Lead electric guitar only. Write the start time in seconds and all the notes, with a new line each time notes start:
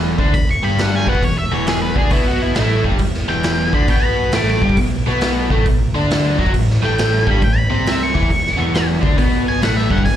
0.34 B5
0.51 C#6
0.64 B5
0.81 F#5
0.95 G#5
1.09 F#5
1.24 C#5
1.38 E5
1.54 C#5
1.68 G#4
1.82 B4
1.98 G#4
2.11 E4
2.28 F#4
2.42 E4
2.56 E4
3.29 G5
3.74 B5
3.90 G5
4.05 B5
4.35 D6
4.50 D6
6.85 G5
7.31 B5
7.44 G5
7.58 B5
7.89 E5
8.03 C#6
9.48 G#5
9.64 F#5
9.77 E5
9.91 F#5
10.05 G#5